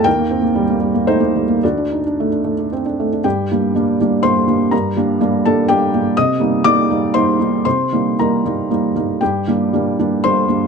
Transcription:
X:1
M:3/4
L:1/16
Q:1/4=118
K:Gm
V:1 name="Felt piano"
[Bg]8 [Ec]4 | [^Fd]8 z4 | [Gg]8 [cc']4 | [Bb]6 [Aa]2 [Gg]4 |
[ee']4 [dd']4 [cc']4 | [cc']4 [Bb]6 z2 | [Gg]8 [cc']4 |]
V:2 name="Felt piano"
E,, B, C B, G, B, G, B, A, B, G, B, | D,, D E D A, D A, D C D A, D | G,,2 [G,B,D]2 [G,B,D]2 [G,B,D]2 [G,B,D]2 [G,B,D]2 | G,,2 [G,B,D]2 [G,B,D]2 [G,B,D]2 [G,B,D]2 [G,B,D]2 |
C,2 [G,B,E]2 [G,B,E]2 [G,B,E]2 [G,B,E]2 [G,B,E]2 | C,2 [G,B,E]2 [G,B,E]2 [G,B,E]2 [G,B,E]2 [G,B,E]2 | G,,2 [G,B,D]2 [G,B,D]2 [G,B,D]2 [G,B,D]2 [G,B,D]2 |]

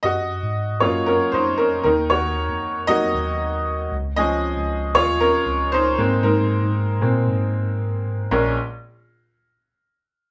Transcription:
X:1
M:4/4
L:1/16
Q:1/4=116
K:Bbm
V:1 name="Upright piano"
[Ge]4 z2 [Fd]2 [DB]2 [Ec]2 [DB]2 B2 | [Gd]6 [Ge]8 z2 | [Ae]4 z2 [Fd]2 [DB]4 [Ec]4 | [EB]12 z4 |
[A,DB]2 z12 z2 |]
V:2 name="Upright piano"
z6 [G,B,D]6 z2 [E,B,E]2- | [E,B,E]6 [G,B,E]2 z8 | [F,A,D]2 z12 [A,B,C]2- | [A,B,C]4 z2 [A,B,C]2 z8 |
B,,,2 z12 z2 |]
V:3 name="Tine electric piano" clef=bass
G,,3 A,,3 G,,3 z F,,4 E,,2 | E,,3 F,,3 F,,2 E,,6 D,,2- | D,,3 D,,3 E,,3 z D,,4 A,,2 | A,,3 A,,3 B,,2 A,,8 |
B,,,2 z12 z2 |]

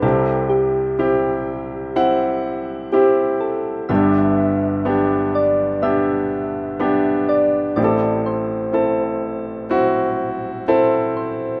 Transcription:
X:1
M:4/4
L:1/8
Q:1/4=62
K:G
V:1 name="Soft synth lead"
A G4- G G A | e3 d e3 d | d c4- c c c |]
V:2 name="Grand piano"
[CEG]2 [CEG]2 [CEf]2 [CEG]2 | [B,DG]2 [B,DG]2 [B,DG]2 [B,DG]2 | [CEGA]2 [CEA]2 [CEF]2 [CEA]2 |]
V:3 name="Grand piano" clef=bass
[C,,C,]8 | [G,,,G,,]8 | [A,,,A,,]8 |]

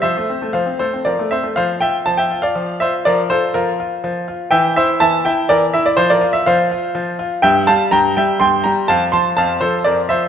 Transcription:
X:1
M:3/4
L:1/16
Q:1/4=123
K:F
V:1 name="Grand piano"
[ce]4 [cf]2 [Ac]2 [Bd]2 [ce]2 | [cf]2 [eg]2 a [eg]2 [df]3 [ce]2 | [Bd]2 [Ac]2 [FB]2 z6 | [eg]2 [ce]2 [ea]2 [eg]2 [Bd]2 e d |
c [Bd]2 e [cf]6 z2 | [eg]2 [fa]2 [gb]2 [eg]2 [gc']2 [gb]2 | [fa]2 [ac']2 [fa]2 [Ac]2 [Bd]2 [ce]2 |]
V:2 name="Grand piano" clef=bass
F, A, C A, F, C A, C F, A, C A, | F,2 F2 F,2 F2 F,2 F2 | F,2 F2 F,2 F2 F,2 F2 | E,2 E2 E,2 E2 E,2 E2 |
F,2 F2 F,2 F2 F,2 F2 | G,,2 G,2 G,,2 G,2 G,,2 G,2 | F,,2 F,2 F,,2 F,2 F,,2 F,2 |]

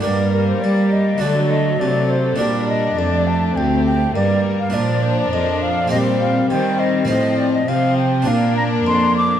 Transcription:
X:1
M:4/4
L:1/16
Q:1/4=102
K:Gm
V:1 name="Flute"
d2 B c d2 e2 d2 e2 d2 c2 | d2 e2 d2 a2 g2 g2 d3 f | [K:Bb] d2 c d e2 f2 e2 f2 g2 e2 | e2 d e f2 g2 f2 b2 c'2 d'2 |]
V:2 name="Violin section"
B4 G4 A4 A4 | B4 G4 G4 B4 | [K:Bb] B8 c4 c4 | c4 c4 B8 |]
V:3 name="Harpsichord"
[DGB]8 [D^FA]8 | [DGB]16 | [K:Bb] [DFB]8 [CGc]8 | [CFc]8 [DFB]8 |]
V:4 name="Harpsichord" clef=bass
G,,4 G,4 D,4 C,4 | B,,4 F,,4 D,,4 G,,4 | [K:Bb] B,,4 F,,4 B,,4 E,4 | A,,4 C,4 B,,4 F,,4 |]
V:5 name="Violin section"
B,8 A,4 A,4 | D8 C4 B,4 | [K:Bb] D8 C4 C4 | C4 C4 D8 |]
V:6 name="Viola section" clef=bass
G,8 ^F,8 | G,4 A,8 G,4 | [K:Bb] F,8 G,4 G,4 | F,4 F,4 B,8 |]
V:7 name="Cello section" clef=bass
G,,4 G,4 D,4 C,4 | B,,4 F,,4 D,,4 G,,4 | [K:Bb] B,,4 F,,4 B,,4 E,4 | A,,4 C,4 B,,4 F,,4 |]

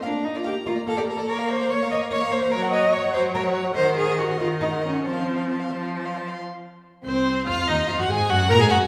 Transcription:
X:1
M:6/8
L:1/16
Q:3/8=96
K:Bb
V:1 name="Violin"
b12 | [K:Bbm] d' b d' b d' b d' b d' b d' b | b d' b d' b d' b d' b d' b d' | b c' b c' b c' b c' b c' b c' |
=a c' a c' a c' a c' a c' a c' | z6 c4 f2 | e2 f g a2 g2 b a g2 |]
V:2 name="Violin"
f z2 d f z B d f d B d | [K:Bbm] d f d f d f d f d f d f | d g d g d g d g d g d g | e g e g e g e g e g e g |
c f c f c f c f c f c f | z6 C4 F2 | E2 F G A2 G2 B A G2 |]
V:3 name="Cello"
D2 E F G2 F2 A G A2 | [K:Bbm] B2 c2 d2 e2 d2 c2 | B2 e2 d2 c2 B2 z2 | c2 A2 G2 F2 E2 D2 |
C6 z6 | z6 C,,4 F,,2 | E,,2 F,, G,, A,,2 G,,2 B,, A,, G,,2 |]
V:4 name="Viola"
B, z2 B, B, z B, B, B, B, B, B, | [K:Bbm] B,4- B, z B,4- B, z | G,4- G, z G,4- G, z | E,4- E, z E,4- E, z |
F,4- F, z F,4- F, z | z6 C4 F2 | E2 F G A2 G2 B A G2 |]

